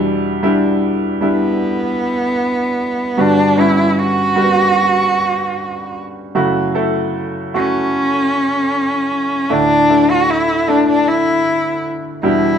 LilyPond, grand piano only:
<<
  \new Staff \with { instrumentName = "Grand piano" } { \time 4/4 \key d \major \tempo 4 = 76 <g d' e'>8 <g d' e'>4 <g d' e'>2 r8 | <g b fis'>8 <g b cis'>4 <g bes b fis'>2 r8 | <a e' fis'>8 <a e' a'>4 <a e' fis'>2 r8 | <a d' e'>8 <a d' e'>4 <a d' e'>2 <g d' e'>8 | }
  \new Staff \with { instrumentName = "Grand piano" } { \clef bass \time 4/4 \key d \major <e, b,>2.~ <e, b,>8 r8 | <g, d>1 | <fis, cis>1 | <d, a,>2.~ <d, a,>8 <e, b,>8 | }
>>